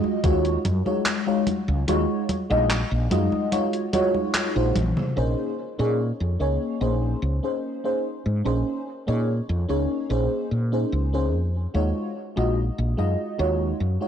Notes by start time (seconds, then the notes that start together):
Already playing: G#3 D#4 F4 F#4 D#5
0.04 high conga
0.23 D#2 G#3 D#4 F4 F#4 C#5, kick, closed hi-hat, high conga
0.45 closed hi-hat
0.65 F#2, closed hi-hat, high conga
0.85 G#3 D#4 F4 F#4 C#5, high conga
1.06 clap, closed hi-hat, high conga
1.26 G#3 D#4 F4 F#4 C#5
1.47 closed hi-hat, high conga
1.68 C#2, high conga
1.88 D#2 G#3 D#4 F4 F#4 C#5, closed hi-hat, high conga
2.29 closed hi-hat, high conga
2.50 A#1 G#3 D#4 F4 F#4 D#5, high conga
2.70 clap, closed hi-hat, high conga
2.91 A#1
3.11 F#2 G#3 D#4 F4 F#4 D#5, closed hi-hat, high conga
3.32 high conga
3.52 G#3 D#4 F4 F#4 C#5, closed hi-hat, high conga
3.73 closed hi-hat
3.93 G#3 D#4 F4 F#4 C#5, closed hi-hat, high conga
4.14 high conga
4.34 clap, closed hi-hat, high conga
4.55 A#1 G#3 D#4 F4 F#4 C5
4.75 A#1, closed hi-hat, high tom, high conga
4.97 mid tom, high conga
5.16 A#1 A#3 C#4 D#4 G#4 C5
5.78 A#2 A#3 C#4 D#4 G#4 C#5
6.20 F2
6.40 C#2 A#3 C#4 D#4 G#4 C#5
6.81 A#1 A#3 C#4 D#4 G#4 C5
7.22 C#2
7.43 A#3 C#4 D#4 G#4 C5
7.84 A#3 C#4 D#4 G#4 C5
8.26 G#2
8.45 A#1 A#3 C#4 D#4 G#4 C5
9.07 A#2 A#3 C#4 D#4 G#4 C#5
9.49 F2
9.68 C#2 A#3 C#4 D#4 G#4 C#5
10.09 A#1 A#3 C#4 D#4 G#4 C5
10.51 A#2
10.72 A#3 C#4 D#4 G#4 C5
10.92 C#2
11.13 A#3 C#4 D#4 G#4 C5
11.34 F2
11.74 D#2 G#3 D#4 F4 F#4 C#5
12.36 A#1 G#3 D#4 F4 F#4 D#5
12.78 A#1
12.97 F#2 G#3 D#4 F4 F#4 D#5
13.38 D#2 G#3 D#4 F4 F#4 C#5
13.80 F#2
14.01 G#3 D#4 F4 F#4 C#5